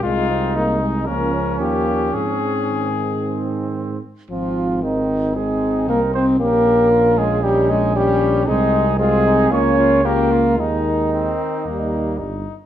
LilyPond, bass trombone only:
\new Staff \with { instrumentName = "Bass trombone" } { \clef bass \time 4/4 \key aes \major \tempo 4 = 114 c,2 des,4 ees,4 | aes,2.~ aes,8 r8 | aes,,2. c,4 | bes,,1 |
c,2 des,2 | ees,4. r8 ees,4 g,,8 r8 | }